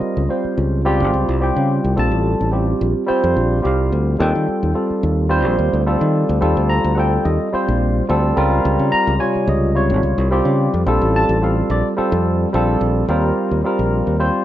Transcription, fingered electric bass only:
0.01 muted fingered electric bass stroke soft
0.17 0.27 C#2 medium
0.44 muted fingered electric bass stroke soft
0.58 1.02 C#2 medium
1.00 1.11 G#1 medium
1.14 1.25 C#2 medium
1.29 1.50 C2 medium
1.56 1.78 C#3 medium
1.84 1.95 C2 medium
1.97 2.09 A#1 medium
2.11 2.33 A1 medium
2.41 2.72 A1 medium
2.81 2.93 A#1 medium
3.10 muted fingered electric bass stroke soft
3.24 3.34 F2 medium
3.36 3.62 A#1 medium
3.65 3.90 C2 medium
3.92 4.17 D2 medium
4.20 4.32 D#2 loud
4.35 4.45 D#3 medium
4.48 muted fingered electric bass stroke soft
4.63 4.73 D#2 medium
4.90 muted fingered electric bass stroke soft
5.03 5.46 D#2 medium
5.46 5.56 A#1 medium
5.59 5.70 D#2 medium
5.73 5.95 D2 medium
6.01 6.23 D#3 medium
6.29 6.40 D2 medium
6.42 6.54 D#2 medium
6.57 6.79 D2 medium
6.84 7.17 D2 medium
7.25 7.37 D#2 medium
7.54 muted fingered electric bass stroke soft
7.68 8.00 A#1 medium
8.09 8.31 D2 medium
8.37 8.59 C#2 medium
8.65 8.76 C#2 loud
8.79 8.90 C#3 medium
8.93 muted fingered electric bass stroke soft
9.07 9.17 C#2 medium
9.35 muted fingered electric bass stroke soft
9.47 9.91 C#2 medium
9.90 10.00 G#1 medium
10.03 10.15 C#2 medium
10.18 10.40 C2 medium
10.45 10.67 C#3 medium
10.74 10.84 F2 medium
10.86 10.98 A#1 medium
11.01 11.23 A1 medium
11.29 11.61 A1 medium
11.70 11.81 A#1 medium
11.98 muted fingered electric bass stroke soft
12.12 12.44 F2 medium
12.54 12.76 A#1 medium
12.81 13.03 A#1 medium
13.09 13.30 D#2 medium
13.51 13.62 D#2 medium
13.79 14.01 A#1 medium
14.07 14.29 D#2 medium

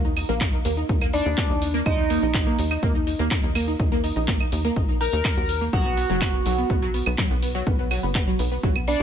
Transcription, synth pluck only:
0.05 0.14 D#4 medium
0.05 0.14 D#5 medium
0.17 0.26 D#4 medium
0.17 0.26 D#5 medium
0.29 0.38 A#3 loud
0.29 0.38 A#4 medium
0.41 0.50 D#4 medium
0.41 0.50 D#5 medium
0.53 0.62 D#4 medium
0.53 0.62 D#5 medium
0.65 0.74 A#3 loud
0.65 0.74 A#4 medium
0.77 0.86 D#4 medium
0.77 0.86 D#5 medium
0.89 0.98 D#4 medium
0.89 0.98 D#5 medium
1.01 1.10 A#3 loud
1.01 1.10 A#4 medium
1.13 1.23 D#4 medium
1.13 1.23 D#5 medium
1.26 1.35 D#4 medium
1.26 1.35 D#5 medium
1.38 1.47 A#3 loud
1.38 1.47 A#4 medium
1.50 1.59 D#4 medium
1.50 1.59 D#5 medium
1.62 1.71 D#4 medium
1.62 1.71 D#5 medium
1.74 1.83 A#3 loud
1.74 1.83 A#4 medium
1.86 1.95 D#4 medium
1.86 1.95 D#5 medium
1.98 2.07 D#4 medium
1.98 2.07 D#5 medium
2.10 2.19 A#3 loud
2.10 2.19 A#4 medium
2.22 2.31 D#4 medium
2.22 2.31 D#5 medium
2.34 2.44 D#4 medium
2.34 2.44 D#5 medium
2.47 2.56 A#3 loud
2.47 2.56 A#4 medium
2.58 2.68 D#4 medium
2.58 2.68 D#5 medium
2.71 2.80 D#4 medium
2.71 2.80 D#5 medium
2.83 2.92 A#3 loud
2.83 2.92 A#4 medium
2.95 3.04 D#4 medium
2.95 3.04 D#5 medium
3.07 3.16 D#4 medium
3.07 3.16 D#5 medium
3.19 3.28 A#3 loud
3.19 3.28 A#4 medium
3.31 3.40 D#4 medium
3.31 3.40 D#5 medium
3.43 3.52 D#4 medium
3.43 3.52 D#5 medium
3.55 3.65 A#3 loud
3.55 3.65 A#4 medium
3.68 3.77 D#4 medium
3.68 3.77 D#5 medium
3.80 3.89 D#4 medium
3.80 3.89 D#5 medium
3.92 4.01 A#3 loud
3.92 4.01 A#4 medium
4.04 4.13 D#4 medium
4.04 4.13 D#5 medium
4.16 4.25 D#4 medium
4.16 4.25 D#5 medium
4.28 4.37 A#3 loud
4.28 4.37 A#4 medium
4.40 4.49 D#4 medium
4.40 4.49 D#5 medium
4.52 4.61 D#4 medium
4.52 4.61 D#5 medium
4.65 4.73 A#3 loud
4.65 4.73 A#4 medium
4.76 4.86 D#4 medium
4.76 4.86 D#5 medium
4.89 4.98 D#4 medium
4.89 4.98 D#5 medium
5.01 5.06 D#4 medium
5.01 5.06 D#5 medium
5.13 5.18 D#4 medium
5.13 5.18 D#5 medium
5.25 5.34 D#4 medium
5.25 5.34 D#5 medium
5.37 5.42 F#4 medium
5.37 5.42 F#5 medium
5.49 5.58 A#4 medium
5.49 5.58 A#5 medium
5.61 5.73 A#3 medium
5.61 5.73 A#4 medium
5.73 5.82 F#3 loud
5.73 5.82 F#4 medium
5.85 5.94 B3 medium
5.85 5.94 B4 medium
5.97 6.07 B3 medium
5.97 6.07 B4 medium
6.10 6.19 F#3 loud
6.10 6.19 F#4 medium
6.22 6.31 B3 medium
6.22 6.31 B4 medium
6.34 6.43 B3 medium
6.34 6.43 B4 medium
6.46 6.55 F#3 loud
6.46 6.55 F#4 medium
6.58 6.67 B3 medium
6.58 6.67 B4 medium
6.70 6.79 B3 medium
6.70 6.79 B4 medium
6.82 6.91 F#3 loud
6.82 6.91 F#4 medium
6.94 7.03 B3 medium
6.94 7.03 B4 medium
7.06 7.15 B3 medium
7.06 7.15 B4 medium
7.18 7.28 F#3 loud
7.18 7.28 F#4 medium
7.31 7.40 B3 medium
7.31 7.40 B4 medium
7.43 7.52 B3 medium
7.43 7.52 B4 medium
7.55 7.64 F#3 loud
7.55 7.64 F#4 medium
7.67 7.76 B3 medium
7.67 7.76 B4 medium
7.79 7.88 B3 medium
7.79 7.88 B4 medium
7.91 8.00 F#3 loud
7.91 8.00 F#4 medium
8.03 8.12 B3 medium
8.03 8.12 B4 medium
8.15 8.24 B3 medium
8.15 8.24 B4 medium
8.27 8.36 F#3 loud
8.27 8.36 F#4 medium
8.39 8.48 B3 medium
8.39 8.48 B4 medium
8.52 8.60 B3 medium
8.52 8.60 B4 medium
8.63 8.73 F#3 loud
8.63 8.73 F#4 medium
8.76 8.85 B3 medium
8.76 8.85 B4 medium
8.88 8.97 B3 medium
8.88 8.97 B4 medium

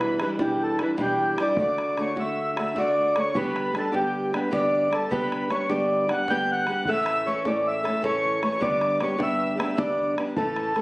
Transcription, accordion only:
0.00 0.19 B4 medium
0.22 0.31 B4 medium
0.41 0.63 G4 medium
0.63 0.82 A4 medium
0.83 0.91 B4 medium
1.02 1.42 G4 medium
1.41 1.58 D5 medium
1.60 2.00 D5 loud
2.02 2.20 C#5 medium
2.20 2.57 E5 medium
2.59 2.78 E5 medium
2.79 3.19 D5 medium
3.19 3.37 C#5 medium
3.37 3.77 B4 loud
3.78 3.94 A4 medium
3.96 4.32 G4 medium
4.34 4.53 B4 medium
4.54 4.94 D5 loud
4.93 5.10 A4 medium
5.11 5.52 B4 loud
5.51 5.68 C#5 medium
5.70 6.11 D5 medium
6.10 6.29 F#5 medium
6.30 6.51 G5 loud
6.52 6.90 F#5 medium
6.89 7.29 E5 loud
7.27 7.46 C#5 medium
7.47 7.68 D5 medium
7.67 8.02 E5 medium
8.05 8.41 C#5 loud
8.44 8.63 C#5 medium
8.62 8.99 D5 loud
9.03 9.20 C#5 medium
9.22 9.58 E5 loud
9.59 9.79 E5 medium
9.79 10.16 D5 medium
10.37 10.82 A4 medium

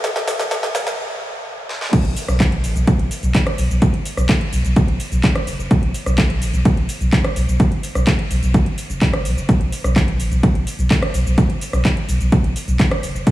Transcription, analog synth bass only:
0.16 0.24 F#1 medium
0.39 0.48 B1 medium
0.75 0.83 B1 loud
0.87 0.95 B1 medium
2.05 2.13 B1 medium
2.28 2.65 B1 medium
2.64 2.72 A1 medium
2.76 2.84 B1 medium
2.99 3.08 B1 medium
3.23 3.31 B1 medium
3.58 3.67 B1 loud
3.70 3.79 B1 medium
3.94 4.02 F#1 medium
4.17 4.26 B1 medium
4.53 4.61 B1 medium
4.65 4.73 B1 medium
4.88 4.97 B1 medium
5.12 5.20 B1 medium
5.47 5.56 F#1 loud
5.59 5.68 F#1 medium
5.83 5.91 B1 medium
6.06 6.43 B1 medium
6.42 6.50 A1 medium
6.54 6.62 B1 medium
6.77 6.86 B1 medium
7.01 7.09 B1 medium
7.36 7.45 B1 medium
7.48 7.57 B1 medium
7.72 7.80 F#1 medium
7.95 8.04 B1 medium
8.31 8.39 B1 medium
8.43 8.68 B1 medium
8.66 8.75 F#1 medium
8.90 9.27 F#1 medium
9.25 9.34 B1 medium
9.37 9.46 F#1 medium
9.61 9.69 B1 medium
9.84 10.21 B1 medium
10.20 10.28 A1 medium
10.32 10.40 B1 medium
10.55 10.64 B1 medium
10.79 10.87 B1 medium
11.14 11.23 B1 medium
11.26 11.35 B1 medium
11.50 11.58 F#1 medium
11.73 11.82 B1 medium
12.09 12.17 B1 medium
12.21 12.29 B1 medium
12.44 12.53 B1 medium
12.68 12.76 B1 medium
13.03 13.12 F#1 loud
13.15 13.24 F#1 medium

